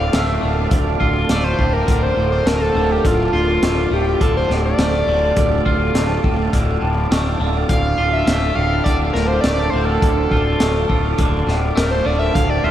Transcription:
Already playing: D2 A2 D3 A3 F4 D5 F5
0.13 D1 A3, snare, closed hi-hat
0.27 E5
0.42 D1 D3
0.71 D1 D2, kick, closed hi-hat
1.00 D1 F4, kick
1.29 D1 A3 D5, snare, closed hi-hat
1.44 C5
1.59 D1 A2, kick
1.73 A#4
1.87 D1 D3, kick, closed hi-hat
2.03 C5
2.17 D1 A2
2.32 C5
2.46 D1 A3 A#4, snare, closed hi-hat
2.61 A4
2.75 D1 D3
2.91 G4
3.04 D1 D2 F4, kick, closed hi-hat
3.33 D1 F4
3.62 D1 A3, snare, closed hi-hat
3.91 D1 A2 G4
4.21 D1 D3 A4, kick, closed hi-hat
4.37 C5
4.49 D1 A2, snare
4.66 D5
4.78 D1 A3, snare, closed hi-hat
5.07 D1 D3
5.36 D1 D2, kick, closed hi-hat
5.66 D1 F4, kick
5.94 D1 A3, snare, closed hi-hat
6.24 D1 A2, kick
6.53 D1 D3, kick, closed hi-hat
6.81 D1 A2
7.11 D1 A3, snare, closed hi-hat
7.40 D1 D3
7.69 D1 D2 F5, kick, closed hi-hat
7.98 D1 F4
8.13 E5
8.27 D1 A3, snare, closed hi-hat
8.55 D1 A2 F5
8.84 D1 D3 D5, kick, closed hi-hat
9.13 D1 A2 A#4, snare
9.27 C5
9.41 D1 A3 D5, snare, closed hi-hat
9.70 D1 D3 C5
9.85 A4
10.02 D1 D2, kick, closed hi-hat
10.31 D1 F4, kick
10.60 D1 A3, snare, closed hi-hat
10.89 D1 A2, kick
11.18 D1 D3, kick, closed hi-hat
11.47 D1 A2, snare
11.75 D1 A3 A#4, snare, closed hi-hat
11.91 C5
12.05 D1 D3 D5
12.19 E5
12.34 D1 D2 F5, kick, closed hi-hat
12.50 D5
12.64 D1 F4 E5

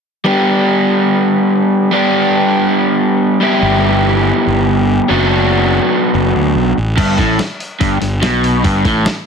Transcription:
0.24 G3 B3 D4 G4
1.92 G3 B3 D4 G4
3.40 G3 B3 E4 G4
3.62 G1
4.47 G1
5.08 F#1 F#3 B3 D4 F#4
6.14 F#1
6.35 D2
6.55 B1
6.77 A1
6.97 G1 G2, kick, open hi-hat, crash
7.18 A1 A2, kick, open hi-hat
7.39 snare, open hi-hat
7.60 open hi-hat
7.81 G1 G2, kick, open hi-hat
8.01 G1 G2, snare, open hi-hat
8.22 B1 B2, snare, open hi-hat
8.44 open hi-hat
8.63 G1 G2, kick, open hi-hat
8.85 A1 A2, kick, open hi-hat
9.06 snare, open hi-hat

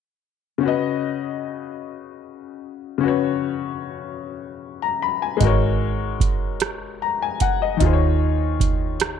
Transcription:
0.58 C#3 C#4
0.63 F#4 B4
0.68 D#5
2.98 C#3 C#4
3.03 F#4 B4
3.08 C#5
4.82 A#5
5.02 B5
5.22 G#5
5.37 G#3 D#4, kick, closed hi-hat
5.41 G#1 F#4 A#4
5.47 C#5
6.20 kick, closed hi-hat
6.60 cross-stick, closed hi-hat
7.02 A#5
7.22 G#5
7.40 F#5, kick, closed hi-hat
7.62 D#5
7.77 D#3 D#4, kick, closed hi-hat
7.81 D#2 F4 G#4
7.86 C5
7.93 C#5
8.60 kick, closed hi-hat
9.00 cross-stick, closed hi-hat

